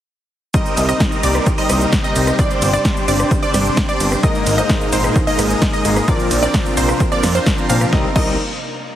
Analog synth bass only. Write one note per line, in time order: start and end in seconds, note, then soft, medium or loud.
0.77 0.93 C2 loud
1.23 1.39 C2 loud
1.70 1.85 C2 medium
2.16 2.32 C2 loud
2.62 2.78 G1 loud
3.08 3.24 G1 loud
3.54 3.70 G1 medium
4.00 4.16 G1 loud
4.47 4.62 G#1 loud
4.93 5.09 G#1 loud
5.39 5.55 G#1 medium
5.85 6.01 G#1 loud
6.31 6.47 A#1 loud
6.77 6.93 A#1 loud
7.23 7.39 F2 medium
7.70 7.85 A#2 medium
7.93 8.06 C2 loud
8.16 8.37 C2 loud